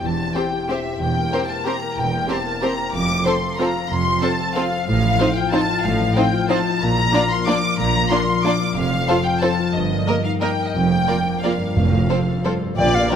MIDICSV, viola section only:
0, 0, Header, 1, 2, 480
1, 0, Start_track
1, 0, Key_signature, -1, "major"
1, 0, Tempo, 323276
1, 49, Time_signature, 3, 2, 24, 8
1, 7229, Key_signature, -2, "major"
1, 13491, Tempo, 334821
1, 19327, End_track
2, 0, Start_track
2, 0, Title_t, "Viola section"
2, 0, Program_c, 0, 48
2, 522, Note_on_c, 0, 67, 42
2, 532, Note_on_c, 0, 60, 43
2, 641, Note_off_c, 0, 67, 0
2, 650, Note_off_c, 0, 60, 0
2, 1020, Note_on_c, 0, 60, 48
2, 1023, Note_on_c, 0, 67, 51
2, 1139, Note_off_c, 0, 60, 0
2, 1142, Note_off_c, 0, 67, 0
2, 1974, Note_on_c, 0, 67, 45
2, 1978, Note_on_c, 0, 60, 44
2, 2092, Note_off_c, 0, 67, 0
2, 2096, Note_off_c, 0, 60, 0
2, 2461, Note_on_c, 0, 60, 46
2, 2461, Note_on_c, 0, 67, 53
2, 2580, Note_off_c, 0, 60, 0
2, 2580, Note_off_c, 0, 67, 0
2, 3388, Note_on_c, 0, 60, 43
2, 3389, Note_on_c, 0, 67, 46
2, 3507, Note_off_c, 0, 60, 0
2, 3508, Note_off_c, 0, 67, 0
2, 3895, Note_on_c, 0, 67, 50
2, 3896, Note_on_c, 0, 60, 55
2, 4014, Note_off_c, 0, 60, 0
2, 4014, Note_off_c, 0, 67, 0
2, 4831, Note_on_c, 0, 65, 45
2, 4834, Note_on_c, 0, 60, 49
2, 4950, Note_off_c, 0, 65, 0
2, 4953, Note_off_c, 0, 60, 0
2, 5319, Note_on_c, 0, 65, 55
2, 5326, Note_on_c, 0, 60, 59
2, 5438, Note_off_c, 0, 65, 0
2, 5444, Note_off_c, 0, 60, 0
2, 6269, Note_on_c, 0, 60, 52
2, 6276, Note_on_c, 0, 65, 46
2, 6387, Note_off_c, 0, 60, 0
2, 6395, Note_off_c, 0, 65, 0
2, 6772, Note_on_c, 0, 60, 55
2, 6775, Note_on_c, 0, 65, 58
2, 6891, Note_off_c, 0, 60, 0
2, 6894, Note_off_c, 0, 65, 0
2, 7721, Note_on_c, 0, 63, 54
2, 7723, Note_on_c, 0, 60, 47
2, 7840, Note_off_c, 0, 63, 0
2, 7842, Note_off_c, 0, 60, 0
2, 8197, Note_on_c, 0, 60, 58
2, 8204, Note_on_c, 0, 63, 58
2, 8316, Note_off_c, 0, 60, 0
2, 8323, Note_off_c, 0, 63, 0
2, 9156, Note_on_c, 0, 60, 57
2, 9159, Note_on_c, 0, 63, 53
2, 9275, Note_off_c, 0, 60, 0
2, 9278, Note_off_c, 0, 63, 0
2, 9637, Note_on_c, 0, 63, 62
2, 9642, Note_on_c, 0, 60, 60
2, 9756, Note_off_c, 0, 63, 0
2, 9761, Note_off_c, 0, 60, 0
2, 10583, Note_on_c, 0, 62, 57
2, 10584, Note_on_c, 0, 58, 56
2, 10702, Note_off_c, 0, 62, 0
2, 10703, Note_off_c, 0, 58, 0
2, 11086, Note_on_c, 0, 58, 57
2, 11087, Note_on_c, 0, 62, 58
2, 11205, Note_off_c, 0, 58, 0
2, 11206, Note_off_c, 0, 62, 0
2, 12034, Note_on_c, 0, 58, 57
2, 12039, Note_on_c, 0, 62, 58
2, 12153, Note_off_c, 0, 58, 0
2, 12158, Note_off_c, 0, 62, 0
2, 12535, Note_on_c, 0, 58, 62
2, 12538, Note_on_c, 0, 62, 56
2, 12654, Note_off_c, 0, 58, 0
2, 12657, Note_off_c, 0, 62, 0
2, 13487, Note_on_c, 0, 65, 59
2, 13494, Note_on_c, 0, 60, 49
2, 13602, Note_off_c, 0, 65, 0
2, 13609, Note_off_c, 0, 60, 0
2, 13977, Note_on_c, 0, 60, 54
2, 13980, Note_on_c, 0, 65, 52
2, 14092, Note_off_c, 0, 60, 0
2, 14095, Note_off_c, 0, 65, 0
2, 14902, Note_on_c, 0, 58, 46
2, 14908, Note_on_c, 0, 70, 45
2, 15017, Note_off_c, 0, 58, 0
2, 15022, Note_off_c, 0, 70, 0
2, 15394, Note_on_c, 0, 58, 51
2, 15395, Note_on_c, 0, 70, 52
2, 15509, Note_off_c, 0, 58, 0
2, 15510, Note_off_c, 0, 70, 0
2, 16350, Note_on_c, 0, 65, 47
2, 16358, Note_on_c, 0, 58, 44
2, 16465, Note_off_c, 0, 65, 0
2, 16472, Note_off_c, 0, 58, 0
2, 16849, Note_on_c, 0, 58, 50
2, 16857, Note_on_c, 0, 65, 49
2, 16964, Note_off_c, 0, 58, 0
2, 16972, Note_off_c, 0, 65, 0
2, 17806, Note_on_c, 0, 60, 45
2, 17808, Note_on_c, 0, 65, 41
2, 17921, Note_off_c, 0, 60, 0
2, 17922, Note_off_c, 0, 65, 0
2, 18315, Note_on_c, 0, 65, 50
2, 18321, Note_on_c, 0, 60, 44
2, 18430, Note_off_c, 0, 65, 0
2, 18436, Note_off_c, 0, 60, 0
2, 19264, Note_on_c, 0, 65, 55
2, 19268, Note_on_c, 0, 62, 52
2, 19327, Note_off_c, 0, 62, 0
2, 19327, Note_off_c, 0, 65, 0
2, 19327, End_track
0, 0, End_of_file